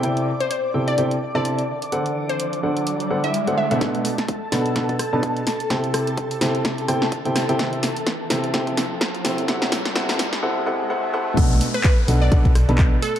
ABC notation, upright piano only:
X:1
M:4/4
L:1/16
Q:"Swing 16ths" 1/4=127
K:Bphr
V:1 name="Upright piano"
[C,EAcg]2 z4 [C,EAcg]2 [C,EAcg] z2 [C,EAca]2 z3 | [D,DAcf]6 [D,DAcf]4 [D,DAcf] z2 [D,DAcf] z [B,,DAcf] | [B,,DABf]2 z4 [B,,DABf]2 [B,,DABf] z2 [B,,DABa]2 z3 | [C,EAcg]6 [C,EAcg]4 [C,EAcg] z2 [C,EAcg] z [C,EAcg] |
[C,EAcg]2 z4 [C,EAcg]2 [C,EAcg]2 z4 [C,EAcg]2 | [C,EAcf]2 z2 [C,EAcf]2 z2 [C,EAcf]2 [C,EAcf]2 [C,EAcf]2 [C,EAcf]2 | [B,,DABf]2 z4 [B,,DABf]2 [B,,DABf] z2 [B,,DABa]2 z3 |]